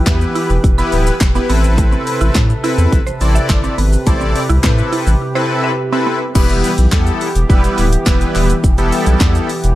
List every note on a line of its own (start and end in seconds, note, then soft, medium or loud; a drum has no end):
0.00 1.46 E3 medium
0.00 1.46 G4 medium
0.00 6.31 B4 medium
0.07 0.25 E2 loud
0.07 0.17 B3 medium
0.07 0.51 B3 medium
0.07 0.51 E4 medium
0.07 0.51 G4 medium
0.07 0.52 B4 medium
0.07 kick loud
0.07 snare medium
0.07 clap loud
0.07 closed hi-hat medium
0.07 shaker medium
0.21 shaker soft
0.35 0.46 E4 medium
0.35 open hi-hat medium
0.35 shaker medium
0.50 0.59 E1 loud
0.50 shaker medium
0.64 0.82 E1 loud
0.64 kick loud
0.64 closed hi-hat medium
0.64 shaker medium
0.78 1.14 B3 loud
0.78 1.14 E4 medium
0.78 1.14 G4 medium
0.78 1.14 B4 loud
0.78 0.88 B5 loud
0.78 shaker medium
0.92 1.11 D1 medium
0.92 open hi-hat medium
0.92 shaker medium
1.07 1.17 E6 medium
1.07 shaker medium
1.21 1.39 E1 loud
1.21 kick loud
1.21 snare medium
1.21 clap loud
1.21 closed hi-hat medium
1.21 shaker medium
1.35 1.49 B3 medium
1.35 1.46 B3 medium
1.35 1.48 E4 medium
1.35 1.50 G4 medium
1.35 1.49 B4 loud
1.35 shaker soft
1.49 1.96 A1 loud
1.49 6.31 C3 medium
1.49 1.60 B3 medium
1.49 2.41 C4 medium
1.49 2.41 E4 medium
1.49 3.76 A4 medium
1.49 2.41 A4 medium
1.49 2.41 B4 loud
1.49 open hi-hat medium
1.49 shaker medium
1.64 shaker medium
1.78 1.89 A3 medium
1.78 kick loud
1.78 closed hi-hat medium
1.78 shaker medium
1.92 2.03 C4 medium
1.92 shaker soft
2.07 open hi-hat medium
2.07 shaker medium
2.21 2.30 A1 medium
2.21 2.31 E4 loud
2.21 shaker medium
2.35 2.54 A2 loud
2.35 2.46 C4 medium
2.35 kick loud
2.35 snare medium
2.35 clap loud
2.35 clap medium
2.35 closed hi-hat medium
2.35 shaker medium
2.50 shaker soft
2.64 2.99 C4 medium
2.64 2.74 E4 medium
2.64 3.00 E4 medium
2.64 3.00 A4 medium
2.64 3.00 B4 loud
2.64 open hi-hat medium
2.64 shaker medium
2.78 2.87 E2 medium
2.78 shaker medium
2.92 3.11 A1 medium
2.92 kick loud
2.92 closed hi-hat medium
2.92 shaker medium
3.07 3.17 C5 loud
3.07 shaker medium
3.21 3.40 A1 medium
3.21 3.75 C4 medium
3.21 3.75 E4 medium
3.21 3.75 A4 medium
3.21 3.75 D5 medium
3.21 open hi-hat medium
3.21 shaker medium
3.35 3.46 E5 medium
3.35 shaker medium
3.49 3.68 G1 loud
3.49 kick loud
3.49 snare medium
3.49 clap medium
3.49 clap loud
3.49 closed hi-hat medium
3.49 shaker medium
3.64 3.74 C4 medium
3.64 shaker soft
3.78 3.97 G#1 loud
3.78 3.88 B3 medium
3.78 6.33 G4 medium
3.78 open hi-hat medium
3.78 shaker medium
3.93 shaker medium
4.07 4.35 A1 loud
4.07 4.17 A3 medium
4.07 4.42 C4 loud
4.07 4.42 E4 loud
4.07 4.43 A4 medium
4.07 4.43 D5 loud
4.07 kick loud
4.07 closed hi-hat medium
4.07 shaker medium
4.21 4.31 C4 medium
4.21 shaker soft
4.36 open hi-hat medium
4.36 shaker medium
4.49 4.59 C2 loud
4.49 4.60 E4 loud
4.49 shaker medium
4.64 4.82 A2 loud
4.64 4.74 C4 medium
4.64 5.09 C4 medium
4.64 5.09 E4 medium
4.64 5.09 A4 medium
4.64 5.09 B4 medium
4.64 kick loud
4.64 snare medium
4.64 clap loud
4.64 clap medium
4.64 closed hi-hat medium
4.64 shaker medium
4.78 shaker soft
4.92 5.03 E4 medium
4.92 open hi-hat medium
4.92 shaker soft
5.07 5.16 A1 medium
5.07 shaker medium
5.35 5.71 C4 loud
5.35 5.71 E4 medium
5.35 5.71 A4 loud
5.35 5.71 B4 loud
5.35 5.46 C5 loud
5.64 5.74 E5 medium
5.92 6.19 C4 medium
5.92 6.03 C4 medium
5.92 6.19 E4 medium
5.92 6.19 A4 medium
5.92 6.19 B4 loud
6.07 6.17 B3 medium
6.35 6.63 E1 loud
6.35 9.75 E3 medium
6.35 6.71 G3 loud
6.35 6.71 B3 medium
6.35 9.75 B3 medium
6.35 6.71 E4 medium
6.35 9.75 G4 medium
6.35 6.71 G4 medium
6.35 6.71 B4 loud
6.35 kick loud
6.35 crash loud
6.35 shaker medium
6.49 closed hi-hat soft
6.49 shaker soft
6.64 open hi-hat medium
6.64 shaker medium
6.78 6.87 B1 medium
6.78 closed hi-hat medium
6.78 shaker medium
6.92 7.11 E2 loud
6.92 7.28 G3 medium
6.92 7.28 B3 medium
6.92 7.28 E4 medium
6.92 7.28 G4 medium
6.92 7.28 A4 loud
6.92 kick loud
6.92 snare loud
6.92 clap loud
6.92 clap medium
6.92 shaker medium
7.07 closed hi-hat soft
7.07 shaker medium
7.21 open hi-hat medium
7.21 shaker medium
7.35 7.45 E1 loud
7.35 closed hi-hat medium
7.35 shaker medium
7.49 7.68 E1 loud
7.49 7.85 G3 loud
7.49 7.85 B3 medium
7.49 7.85 E4 medium
7.49 7.85 G4 medium
7.49 7.85 B4 loud
7.49 kick loud
7.49 shaker medium
7.64 closed hi-hat medium
7.64 shaker medium
7.78 7.97 D1 medium
7.78 clap medium
7.78 open hi-hat medium
7.78 shaker medium
7.93 closed hi-hat medium
7.93 shaker medium
8.06 8.25 E1 loud
8.06 8.51 G3 medium
8.06 8.51 B3 medium
8.06 8.51 E4 medium
8.06 8.51 G4 medium
8.06 8.51 B4 loud
8.06 kick loud
8.06 snare medium
8.06 clap loud
8.06 clap medium
8.06 shaker medium
8.21 closed hi-hat medium
8.21 shaker medium
8.35 8.54 D#1 medium
8.35 clap medium
8.35 open hi-hat medium
8.35 shaker medium
8.50 closed hi-hat medium
8.50 shaker medium
8.64 8.92 E1 loud
8.64 kick loud
8.64 shaker medium
8.78 9.49 G3 loud
8.78 9.50 B3 medium
8.78 9.50 E4 medium
8.78 9.50 G4 medium
8.78 9.50 A4 loud
8.78 closed hi-hat soft
8.78 shaker soft
8.92 open hi-hat medium
8.92 shaker medium
9.06 9.16 B1 loud
9.06 closed hi-hat medium
9.06 shaker medium
9.21 9.39 E2 loud
9.21 kick loud
9.21 snare medium
9.21 clap loud
9.21 clap medium
9.21 shaker medium
9.35 closed hi-hat medium
9.35 shaker soft
9.49 open hi-hat medium
9.49 shaker medium
9.64 9.73 E1 loud
9.64 closed hi-hat medium
9.64 shaker medium